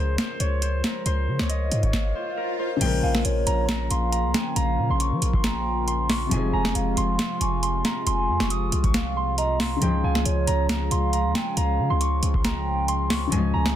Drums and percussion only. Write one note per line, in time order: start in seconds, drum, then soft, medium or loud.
0.18 snare loud
0.18 closed hi-hat medium
0.40 closed hi-hat medium
0.62 closed hi-hat medium
0.84 snare loud
0.84 closed hi-hat medium
1.06 closed hi-hat medium
1.39 snare medium
1.50 closed hi-hat medium
1.72 closed hi-hat medium
1.83 kick medium
1.83 closed hi-hat soft
1.93 kick loud
1.93 snare loud
2.81 closed hi-hat medium
2.81 crash loud
3.15 snare medium
3.25 closed hi-hat medium
3.47 closed hi-hat medium
3.69 snare loud
3.69 closed hi-hat medium
3.91 closed hi-hat medium
4.12 closed hi-hat medium
4.34 snare loud
4.34 closed hi-hat medium
4.56 closed hi-hat medium
5.00 closed hi-hat medium
5.22 closed hi-hat medium
5.33 kick loud
5.44 snare loud
5.44 closed hi-hat medium
5.88 closed hi-hat medium
6.09 snare loud
6.09 open hi-hat medium
6.31 closed hi-hat medium
6.65 snare medium
6.75 closed hi-hat medium
6.97 closed hi-hat medium
7.19 snare loud
7.19 closed hi-hat medium
7.41 closed hi-hat medium
7.63 closed hi-hat medium
7.85 snare loud
7.85 closed hi-hat medium
8.07 closed hi-hat medium
8.40 snare medium
8.50 closed hi-hat medium
8.72 closed hi-hat medium
8.84 kick loud
8.84 closed hi-hat medium
8.94 snare loud
8.94 closed hi-hat medium
9.38 closed hi-hat medium
9.60 snare loud
9.60 open hi-hat medium
9.82 closed hi-hat medium
10.15 snare medium
10.26 closed hi-hat medium
10.47 closed hi-hat medium
10.69 snare loud
10.69 closed hi-hat medium
10.91 closed hi-hat medium
11.13 closed hi-hat medium
11.35 snare loud
11.35 closed hi-hat medium
11.57 closed hi-hat medium
12.01 closed hi-hat medium
12.23 closed hi-hat medium
12.34 kick loud
12.44 snare loud
12.44 closed hi-hat medium
12.88 closed hi-hat medium
13.10 snare loud
13.10 open hi-hat medium
13.32 closed hi-hat medium
13.66 snare medium